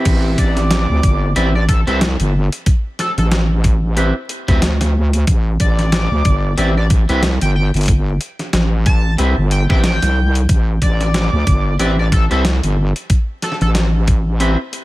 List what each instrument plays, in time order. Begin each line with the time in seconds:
Already playing: clean electric guitar C4 E4 G4 B4
0.05 wobble bass A1, kick, closed hi-hat, crash
0.38 wobble bass A1, analog synth lead D5, kick, closed hi-hat
0.57 snare, closed hi-hat
0.71 snare, closed hi-hat
0.89 wobble bass D2
1.03 wobble bass G1, kick, closed hi-hat
1.36 wobble bass A1, clean electric guitar C4 E4 G4 B4, analog synth lead D5, closed hi-hat
1.55 analog synth lead D5
1.69 analog synth lead A4, kick, closed hi-hat
1.87 wobble bass C2, clean electric guitar C4 E4 G4 B4, analog synth lead A4, closed hi-hat
2.01 snare, closed hi-hat
2.20 wobble bass G1, closed hi-hat
2.52 closed hi-hat
2.66 kick, closed hi-hat
2.99 analog synth lead A4, snare, closed hi-hat
3.17 wobble bass A1, analog synth lead A4, closed hi-hat
3.31 snare, closed hi-hat
3.64 kick, closed hi-hat
3.97 clean electric guitar C4 E4 G4 B4, closed hi-hat
4.29 closed hi-hat
4.48 wobble bass D2, clean electric guitar C4 E4 G4 B4, kick, snare, closed hi-hat
4.62 snare, closed hi-hat
4.81 snare, closed hi-hat
5.13 closed hi-hat
5.27 wobble bass A1, kick, closed hi-hat
5.60 wobble bass A1, analog synth lead D5, kick, closed hi-hat
5.79 snare, closed hi-hat
5.92 snare, closed hi-hat
6.11 wobble bass D2
6.25 wobble bass G1, kick, closed hi-hat
6.57 wobble bass A1, clean electric guitar C4 E4 G4 B4, analog synth lead D5, closed hi-hat
6.77 analog synth lead D5
6.90 kick, closed hi-hat
7.09 wobble bass C2, clean electric guitar C4 E4 G4 B4, closed hi-hat
7.23 snare, closed hi-hat
7.41 wobble bass G1, analog synth lead G5, closed hi-hat
7.56 analog synth lead G5
7.74 wobble bass G1, closed hi-hat
7.76 closed hi-hat
7.81 closed hi-hat
7.83 closed hi-hat
7.86 closed hi-hat
7.88 kick, closed hi-hat
8.21 closed hi-hat
8.39 snare, closed hi-hat
8.53 wobble bass A1, snare, closed hi-hat
8.86 analog synth lead A5, kick, closed hi-hat
9.18 wobble bass C2, clean electric guitar C4 E4 G4 B4, closed hi-hat
9.37 wobble bass G1
9.51 analog synth lead G5, closed hi-hat
9.69 wobble bass A1, clean electric guitar C4 E4 G4 B4, analog synth lead G5, kick, snare
9.84 analog synth lead G5, snare, closed hi-hat
10.02 wobble bass C2, snare, closed hi-hat
10.35 closed hi-hat
10.49 wobble bass A1, kick, closed hi-hat
10.82 wobble bass A1, analog synth lead D5, kick, closed hi-hat
11.01 snare, closed hi-hat
11.14 snare, closed hi-hat
11.33 wobble bass D2
11.47 wobble bass G1, kick, closed hi-hat
11.79 wobble bass A1, clean electric guitar C4 E4 G4 B4, analog synth lead D5, closed hi-hat
11.99 analog synth lead D5
12.12 analog synth lead A4, kick, closed hi-hat
12.31 wobble bass C2, clean electric guitar C4 E4 G4 B4, analog synth lead A4, closed hi-hat
12.45 snare, closed hi-hat
12.63 wobble bass G1, closed hi-hat
12.96 closed hi-hat
13.10 kick, closed hi-hat
13.42 analog synth lead A4, snare, closed hi-hat
13.52 snare
13.61 wobble bass A1, analog synth lead A4, closed hi-hat
13.75 snare, closed hi-hat
14.07 kick, closed hi-hat
14.40 clean electric guitar C4 E4 G4 B4, closed hi-hat
14.73 closed hi-hat